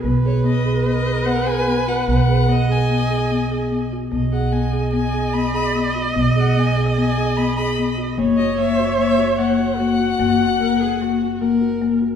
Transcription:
<<
  \new Staff \with { instrumentName = "Violin" } { \time 5/4 \key b \major \tempo 4 = 148 r8 cis''8 dis''4 dis''4 fis''8 gis''4 fis''8 | fis''4. gis''2. r8 | r8 fis''8 gis''4 gis''4 b''8 b''4 r8 | r8 fis''8 gis''4 gis''4 b''8 b''4 r8 |
r8 dis''8 e''4 e''4 fis''2~ | fis''1 r4 | }
  \new Staff \with { instrumentName = "Viola" } { \time 5/4 \key b \major b'1~ b'4~ | b'4 dis''2.~ dis''8 r8 | dis''1~ dis''4~ | dis''1~ dis''4 |
cis''1 fis'4~ | fis'4 ais'8 gis'8 fis'4 ais'4. r8 | }
  \new Staff \with { instrumentName = "Marimba" } { \time 5/4 \key b \major b8 gis'8 b8 gis'8 b8 gis'8 b8 gis'8 b8 fis'8 | b8 gis'8 b8 gis'8 b8 gis'8 b8 gis'8 b8 fis'8 | b8 gis'8 b8 gis'8 b8 gis'8 b8 gis'8 b8 fis'8 | b8 gis'8 b8 gis'8 b8 gis'8 b8 gis'8 b8 fis'8 |
ais8 fis'8 ais8 fis'8 ais8 fis'8 ais8 fis'8 ais8 fis'8 | ais8 fis'8 ais8 fis'8 ais8 fis'8 ais8 fis'8 ais8 fis'8 | }
  \new Staff \with { instrumentName = "Upright bass" } { \clef bass \time 5/4 \key b \major b,,1~ b,,4 | b,,1~ b,,4 | b,,1~ b,,4 | b,,1~ b,,4 |
fis,,1~ fis,,4 | fis,,1~ fis,,4 | }
>>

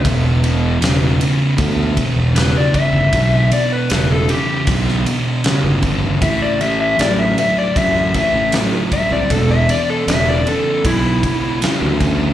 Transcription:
<<
  \new Staff \with { instrumentName = "Electric slide guitar" } { \time 4/4 \key e \minor \tempo 4 = 78 r2. b'16 d''16 e''8~ | e''8 d''16 b'8 a'16 g'8 r2 | e''16 d''16 e''16 e''16 d''16 e''16 e''16 d''16 e''8 e''8 r8 e''16 d''16 | a'16 e''16 d''16 a'16 e''16 d''16 a'8 e'4 r4 | }
  \new Staff \with { instrumentName = "Distorted electric guitar" } { \clef bass \time 4/4 \key e \minor <e, b,>8 <e, b,>8 <e, cis>8 <e, cis>8 <e, b,>8 <e, b,>8 <e, cis>8 <e, cis>8 | <e, b,>8 <e, b,>8 <e, cis>8 <e, cis>8 <e, b,>8 <e, b,>8 <e, cis>8 <e, cis>8 | <a, e>8 <a, e>8 <a, fis>8 <a, fis>8 <a, e>8 <a, e>8 <a, fis>8 <a, fis>8 | <e, b,>8 <e, b,>8 <e, cis>8 <e, cis>8 <e, b,>8 <e, b,>8 <e, cis>8 <e, cis>8 | }
  \new Staff \with { instrumentName = "Fingered electric bass" } { \clef bass \time 4/4 \key e \minor e,,4 e,,8 r8 d,8 r16 e,,8 r8 g,,16 | b,,8 r8 e,,8 r8 b,,8 r8. g,,8. | a,,4 a,,8 r8 fis,8 r16 a,,8 r8 c,16 | e,,8 r8 e,,8 r8 b,,8 r8. d,8. | }
  \new DrumStaff \with { instrumentName = "Drums" } \drummode { \time 4/4 <bd cymr>8 cymr8 <cymr sn>8 cymr8 <bd cymr>8 <bd cymr>8 <cymr sn>8 <bd cymr>8 | <bd cymr>8 cymr8 <cymr sn>8 cymr8 <bd cymr>16 sn16 cymr8 <cymr sn>8 <bd cymr>8 | <bd cymr>8 cymr8 <cymr sn>8 cymr8 <bd cymr>8 <bd cymr>8 <cymr sn>8 <bd cymr>8 | <bd cymr>8 cymr8 <cymr sn>8 cymr8 <bd cymr>8 <bd cymr>8 <cymr sn>8 <bd cymr>8 | }
>>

